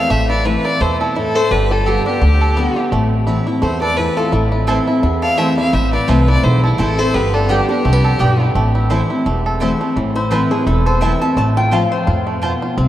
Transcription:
Already playing: C4 A4 D5 F5
0.10 A1 A2 A3 C5 E5
0.30 E4 B4 D5
0.45 E3 A3 C4 E4 B4
0.65 E4 B4 D5
0.80 E2 B2 A3 A4 C5
1.00 E4 A4, muted resonator guitar played with a steel bar stroke
1.16 A2 E4 A4
1.35 A3 A4 C5
1.51 G1 G2 D4 G4 B4
1.70 F4 G4 A4
1.86 D3 G3 B3 D4 G4 A4
2.06 B3 D4 G4
2.21 D2 D3 G4
2.41 A4
2.57 D3 G3 B3 G4
2.76 B3 G4
2.92 A1 A2 A3
3.27 E3 A3 C4 E4
3.47 C4 E4
3.62 E2 A3 A4 C5
3.81 A4 B4 D5
3.97 E3 A3 C4 E4 B4
4.17 A3 F4 A4
4.32 A1 A2 E4
4.52 E4
4.67 E3 A3 C4 E4 A4 C5 A5
4.87 C4 E4
5.03 E2 E4
5.22 A4 D5 F5
5.37 E3 A3 C4 E4 C5 E5 A5
5.57 C4 E4 D5 F5
5.73 A1 A2 E4 C5 E5
5.93 E4 B4 D5
6.07 C2 E3 A3 C4 E4 A4 B4 C5 A5
6.27 C4 E4 B4 D5
6.44 B1 E2 E4 A4 C5
6.64 E4 A4, muted resonator guitar played with a steel bar stroke
6.78 A1 E3 A3 C4 E4 A4 C5 A5
6.98 C4 E4 A4 C5
7.14 G1 G2 B3 G4 B4
7.34 D4 F4 A4
7.49 D3 G3 B3 D4 G4 D5 G5
7.69 B3 D4 G4
7.85 C2 F2 A3
7.93 B3
8.04 A4
8.19 B1 G2 B3 G4 D5 G5
8.40 B3
8.55 A1 A2 A3
8.75 E4
8.90 E3 A3 C4 E4 C5 A5
9.10 C4 E4
9.26 E1 E2 A3
9.46 A4
9.60 E3 A3 C4 E4 C5 A5
9.81 A3 C4 E4
9.96 A1 A2 E3
10.15 E4 C5
10.31 E3 A3 C4 E4 B4 C5 A5
10.51 A3 C4 E4 G#4
10.66 E1 E2 E4 A4
10.86 A4 C5
11.01 E3 A3 C4 E4 C5 E5 A5
11.21 C4 E4 A4 A5
11.37 A1 A2 A3 A5
11.57 F4 G5
11.71 F3 A3 C4 F4 C5 F5 A5
11.92 F4 C5
12.07 F2 A2 F4
12.27 A3
12.42 B2 C4 F4 C5 A5
12.62 F4
12.77 C2 C3 C4

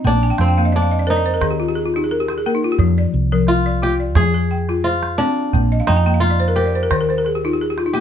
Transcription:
Already playing: D#4 F4
0.04 A#1 A#3 D4, calabash thump, calabash click
0.23 G#5
0.30 G5
0.38 F2 C4 F5, calabash click
0.48 G5
0.58 A#3 F5
0.65 D#5
0.72 D4 D5, calabash click
0.82 F5
0.91 D#5
0.99 D5
1.07 D#4 A#4 C5
1.16 D5
1.26 C5
1.34 A#4
1.41 D#2 D#3 G#4, calabash thump, calabash click
1.51 G4
1.60 F4
1.68 G4
1.75 G#4
1.85 F4
1.94 D#4 G4, calabash click
2.04 G#4
2.11 A#4
2.20 G4
2.28 G4, calabash click
2.38 G#4
2.46 A#3 A#4
2.55 D#4
2.64 F4
2.72 G4
2.79 F2 F3, calabash thump, calabash click
2.98 D5
3.14 C2
3.32 F3 A#4
3.47 F4, calabash click
3.66 D5
3.82 F4 G4
4.00 D5
4.15 F2 F3 G#4, calabash thump, calabash click
4.34 G#4
4.51 G5
4.69 F4, calabash click
4.84 F4 C5
5.03 calabash click
5.18 C4 D4
5.53 A#1 A#3, calabash thump, calabash click
5.72 D#5
5.80 F5
5.87 F2 D#4 G5, calabash click
5.96 G#5
6.06 A#3 G5, calabash click
6.14 F5
6.20 F4 D#5, calabash click
6.30 D5
6.40 C5
6.48 A#4
6.56 G4 A#4 C5
6.66 D5
6.75 C5
6.83 A#4
6.91 D#2 D#3 C5, calabash thump, calabash click
7.01 A#4
7.09 C5, calabash click
7.18 A#4
7.25 G#4, calabash click
7.35 G4
7.45 D#4 F4
7.53 G4
7.61 G#4
7.70 G4
7.78 F4, calabash click
7.86 D#4
7.93 A#3 G4, calabash click

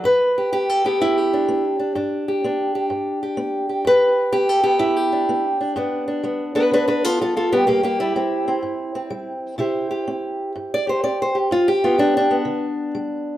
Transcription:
0.04 G2 B4
0.38 G4
0.52 B3 G4
0.69 A4
0.84 B3 G4
1.00 G2 E4
1.17 G4
1.33 D4
1.48 B3
1.79 D4
1.95 G2 D4
2.28 G4
2.44 B3 D4
2.75 G4
2.90 G2
3.23 G4
3.37 B3
3.69 G4
3.85 G2 B4
4.32 B3 G4
4.49 A4
4.63 B3 G4
4.79 G2 E4
4.96 G4
5.12 D4
5.29 B3
5.61 D4
5.76 G2 B3 D4
6.08 D4
6.23 G3 B3
6.55 B3 D4 B4
6.71 D3 D4 B4
6.88 D4 B4
7.04 B3 F4 A4
7.21 G3 F4 A4
7.37 F4 A4
7.52 G3 B3 G4
7.67 C3 A#3 G4
7.83 A#3 G4
8.00 G3 E4
8.16 G3 C4
8.48 C4
8.63 G2
8.95 C4
9.10 G3
9.58 C3 E4 G4 C5
9.91 G4
10.08 C4
10.55 G2
10.74 D5
10.87 G4 C5
11.03 C4 D5
11.22 C5
11.35 G4
11.51 G2 F4
11.68 G4
11.84 B3 F4
11.98 G3 D4
12.17 D4
12.31 B3
12.45 D3
12.95 G3

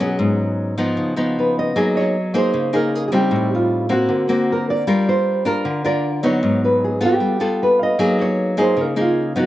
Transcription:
Already playing: B2
0.00 F#3 B3 C#4 G#4
0.19 G#2
0.78 F3 B3 D#4
0.97 C#3
1.16 F3 B3 D#4
1.39 B4
1.59 D#5
1.76 F#3 A#3 D#4 G#4
1.95 C#5 D#5
2.34 A#3 D#4 G#4 C5
2.54 C#3
2.73 A#3 D#4 G#4 A#4
2.95 G#4
3.08 G#4
3.12 G3 C4 D#4 G4
3.31 A2
3.55 F4
3.89 A#3 C4 F#4
4.09 D3 A#4
4.29 A#3 C4 F#4
4.52 A#4
4.70 D5
4.87 G3 D4 F4 A#4
5.09 C5
5.45 D4 F4 A#4
5.65 D3
5.85 D4 F4 A#4 D5
6.23 F#3 B3 D#4 C#5
6.43 G#2
6.64 B4
6.84 G#4
7.01 B3 F4 A4
7.05 G4
7.20 G3
7.40 B3 F4 A4
7.63 B4
7.79 D#5 F5
7.99 F#3 A#3 D#4 G#4
8.21 C#5
8.57 A#3 D#4 G#4 C5
8.77 C#3
8.81 A#4
8.96 A#3 D#4 G#4
9.01 F4
9.36 F#3 B3 D#4 F#4

